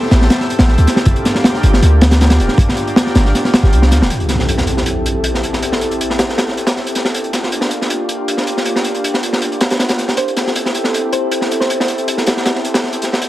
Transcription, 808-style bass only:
0, 0, Header, 1, 2, 480
1, 0, Start_track
1, 0, Tempo, 379747
1, 1346, Time_signature, 4, 2, 24, 8
1, 16796, End_track
2, 0, Start_track
2, 0, Title_t, "808-style bass"
2, 0, Program_c, 0, 38
2, 146, Note_on_c, 0, 33, 96
2, 363, Note_off_c, 0, 33, 0
2, 749, Note_on_c, 0, 33, 100
2, 964, Note_off_c, 0, 33, 0
2, 989, Note_on_c, 0, 38, 93
2, 1094, Note_off_c, 0, 38, 0
2, 1340, Note_on_c, 0, 31, 96
2, 1454, Note_off_c, 0, 31, 0
2, 2065, Note_on_c, 0, 31, 94
2, 2282, Note_off_c, 0, 31, 0
2, 2304, Note_on_c, 0, 38, 103
2, 3026, Note_on_c, 0, 26, 99
2, 3045, Note_off_c, 0, 38, 0
2, 3137, Note_off_c, 0, 26, 0
2, 3260, Note_on_c, 0, 31, 98
2, 3374, Note_off_c, 0, 31, 0
2, 3986, Note_on_c, 0, 31, 96
2, 4203, Note_off_c, 0, 31, 0
2, 4588, Note_on_c, 0, 31, 102
2, 4706, Note_on_c, 0, 36, 107
2, 4725, Note_off_c, 0, 31, 0
2, 4946, Note_on_c, 0, 38, 87
2, 4964, Note_off_c, 0, 36, 0
2, 5070, Note_on_c, 0, 26, 89
2, 5089, Note_off_c, 0, 38, 0
2, 5175, Note_off_c, 0, 26, 0
2, 16796, End_track
0, 0, End_of_file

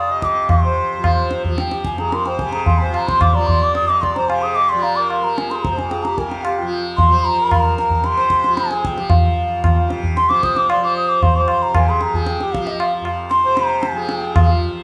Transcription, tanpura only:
0, 0, Header, 1, 2, 480
1, 0, Start_track
1, 0, Tempo, 544959
1, 440, Time_signature, 4, 2, 24, 8
1, 3318, Tempo, 536673
1, 6678, Tempo, 529101
1, 9558, Tempo, 520833
1, 13367, End_track
2, 0, Start_track
2, 0, Title_t, "Tanpura"
2, 0, Program_c, 0, 104
2, 0, Note_on_c, 0, 41, 61
2, 0, Note_on_c, 0, 53, 60
2, 82, Note_on_c, 0, 48, 55
2, 449, Note_off_c, 0, 48, 0
2, 449, Note_on_c, 0, 48, 63
2, 856, Note_off_c, 0, 53, 0
2, 856, Note_on_c, 0, 53, 67
2, 1275, Note_off_c, 0, 53, 0
2, 1275, Note_on_c, 0, 53, 67
2, 1700, Note_off_c, 0, 41, 0
2, 1703, Note_on_c, 0, 41, 71
2, 2121, Note_off_c, 0, 48, 0
2, 2121, Note_on_c, 0, 48, 67
2, 2530, Note_off_c, 0, 53, 0
2, 2530, Note_on_c, 0, 53, 67
2, 2937, Note_off_c, 0, 53, 0
2, 2937, Note_on_c, 0, 53, 67
2, 3343, Note_off_c, 0, 41, 0
2, 3347, Note_on_c, 0, 41, 65
2, 3769, Note_off_c, 0, 48, 0
2, 3772, Note_on_c, 0, 48, 69
2, 4186, Note_off_c, 0, 53, 0
2, 4186, Note_on_c, 0, 53, 68
2, 4618, Note_off_c, 0, 53, 0
2, 4618, Note_on_c, 0, 53, 66
2, 5032, Note_off_c, 0, 41, 0
2, 5035, Note_on_c, 0, 41, 70
2, 5456, Note_off_c, 0, 48, 0
2, 5460, Note_on_c, 0, 48, 63
2, 5874, Note_off_c, 0, 53, 0
2, 5874, Note_on_c, 0, 53, 73
2, 6273, Note_off_c, 0, 53, 0
2, 6273, Note_on_c, 0, 53, 75
2, 6693, Note_off_c, 0, 41, 0
2, 6696, Note_on_c, 0, 41, 62
2, 7108, Note_off_c, 0, 48, 0
2, 7111, Note_on_c, 0, 48, 64
2, 7525, Note_off_c, 0, 53, 0
2, 7525, Note_on_c, 0, 53, 63
2, 7945, Note_off_c, 0, 53, 0
2, 7945, Note_on_c, 0, 53, 62
2, 8351, Note_off_c, 0, 41, 0
2, 8355, Note_on_c, 0, 41, 65
2, 8770, Note_off_c, 0, 48, 0
2, 8773, Note_on_c, 0, 48, 67
2, 9183, Note_off_c, 0, 53, 0
2, 9183, Note_on_c, 0, 53, 63
2, 9613, Note_off_c, 0, 53, 0
2, 9613, Note_on_c, 0, 53, 68
2, 10016, Note_off_c, 0, 41, 0
2, 10020, Note_on_c, 0, 41, 64
2, 10426, Note_off_c, 0, 48, 0
2, 10429, Note_on_c, 0, 48, 61
2, 10852, Note_off_c, 0, 53, 0
2, 10852, Note_on_c, 0, 53, 73
2, 11272, Note_off_c, 0, 53, 0
2, 11272, Note_on_c, 0, 53, 71
2, 11683, Note_off_c, 0, 41, 0
2, 11687, Note_on_c, 0, 41, 68
2, 12100, Note_off_c, 0, 48, 0
2, 12104, Note_on_c, 0, 48, 67
2, 12530, Note_off_c, 0, 53, 0
2, 12530, Note_on_c, 0, 53, 69
2, 12941, Note_off_c, 0, 53, 0
2, 12941, Note_on_c, 0, 53, 70
2, 13349, Note_off_c, 0, 41, 0
2, 13367, Note_off_c, 0, 48, 0
2, 13367, Note_off_c, 0, 53, 0
2, 13367, End_track
0, 0, End_of_file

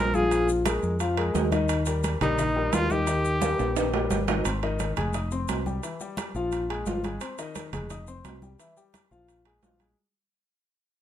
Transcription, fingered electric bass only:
0, 0, Header, 1, 2, 480
1, 0, Start_track
1, 0, Key_signature, -3, "major"
1, 0, Tempo, 345026
1, 433, Time_signature, 4, 2, 24, 8
1, 15323, End_track
2, 0, Start_track
2, 0, Title_t, "Fingered electric bass"
2, 0, Program_c, 0, 33
2, 0, Note_on_c, 0, 34, 93
2, 1072, Note_off_c, 0, 34, 0
2, 1154, Note_on_c, 0, 41, 80
2, 1823, Note_off_c, 0, 41, 0
2, 1874, Note_on_c, 0, 39, 89
2, 2994, Note_off_c, 0, 39, 0
2, 3073, Note_on_c, 0, 34, 86
2, 3742, Note_off_c, 0, 34, 0
2, 3801, Note_on_c, 0, 39, 79
2, 4917, Note_off_c, 0, 39, 0
2, 5002, Note_on_c, 0, 34, 92
2, 5667, Note_off_c, 0, 34, 0
2, 5713, Note_on_c, 0, 32, 90
2, 6136, Note_off_c, 0, 32, 0
2, 6194, Note_on_c, 0, 32, 99
2, 6863, Note_off_c, 0, 32, 0
2, 6914, Note_on_c, 0, 29, 97
2, 7582, Note_off_c, 0, 29, 0
2, 7632, Note_on_c, 0, 36, 84
2, 8056, Note_off_c, 0, 36, 0
2, 8826, Note_on_c, 0, 34, 87
2, 9498, Note_off_c, 0, 34, 0
2, 9546, Note_on_c, 0, 32, 92
2, 9973, Note_off_c, 0, 32, 0
2, 10749, Note_on_c, 0, 29, 94
2, 11421, Note_off_c, 0, 29, 0
2, 11467, Note_on_c, 0, 36, 85
2, 11894, Note_off_c, 0, 36, 0
2, 12673, Note_on_c, 0, 34, 87
2, 13344, Note_off_c, 0, 34, 0
2, 13392, Note_on_c, 0, 34, 93
2, 13818, Note_off_c, 0, 34, 0
2, 15323, End_track
0, 0, End_of_file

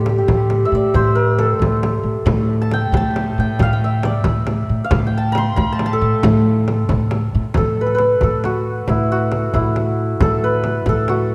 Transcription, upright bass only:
0, 0, Header, 1, 2, 480
1, 0, Start_track
1, 0, Tempo, 441176
1, 1028, Time_signature, 6, 3, 24, 8
1, 12347, End_track
2, 0, Start_track
2, 0, Title_t, "Upright bass"
2, 0, Program_c, 0, 32
2, 0, Note_on_c, 0, 45, 110
2, 207, Note_off_c, 0, 45, 0
2, 304, Note_on_c, 0, 45, 89
2, 722, Note_off_c, 0, 45, 0
2, 783, Note_on_c, 0, 45, 73
2, 889, Note_off_c, 0, 45, 0
2, 1028, Note_on_c, 0, 45, 104
2, 1653, Note_off_c, 0, 45, 0
2, 1732, Note_on_c, 0, 45, 79
2, 2156, Note_off_c, 0, 45, 0
2, 2213, Note_on_c, 0, 45, 78
2, 2324, Note_off_c, 0, 45, 0
2, 2455, Note_on_c, 0, 45, 108
2, 3086, Note_off_c, 0, 45, 0
2, 3179, Note_on_c, 0, 45, 85
2, 3600, Note_off_c, 0, 45, 0
2, 3676, Note_on_c, 0, 45, 80
2, 3778, Note_off_c, 0, 45, 0
2, 3915, Note_on_c, 0, 45, 109
2, 4538, Note_off_c, 0, 45, 0
2, 4625, Note_on_c, 0, 45, 94
2, 5044, Note_off_c, 0, 45, 0
2, 5108, Note_on_c, 0, 45, 79
2, 5213, Note_off_c, 0, 45, 0
2, 5344, Note_on_c, 0, 45, 112
2, 5971, Note_off_c, 0, 45, 0
2, 6067, Note_on_c, 0, 45, 81
2, 6485, Note_off_c, 0, 45, 0
2, 6543, Note_on_c, 0, 45, 86
2, 6651, Note_off_c, 0, 45, 0
2, 6790, Note_on_c, 0, 45, 121
2, 7414, Note_off_c, 0, 45, 0
2, 7520, Note_on_c, 0, 45, 87
2, 7932, Note_off_c, 0, 45, 0
2, 7992, Note_on_c, 0, 45, 90
2, 8096, Note_off_c, 0, 45, 0
2, 8234, Note_on_c, 0, 45, 81
2, 8856, Note_off_c, 0, 45, 0
2, 8950, Note_on_c, 0, 45, 72
2, 9573, Note_off_c, 0, 45, 0
2, 9666, Note_on_c, 0, 45, 86
2, 10291, Note_off_c, 0, 45, 0
2, 10397, Note_on_c, 0, 45, 85
2, 11017, Note_off_c, 0, 45, 0
2, 11103, Note_on_c, 0, 45, 93
2, 11728, Note_off_c, 0, 45, 0
2, 11821, Note_on_c, 0, 45, 89
2, 12347, Note_off_c, 0, 45, 0
2, 12347, End_track
0, 0, End_of_file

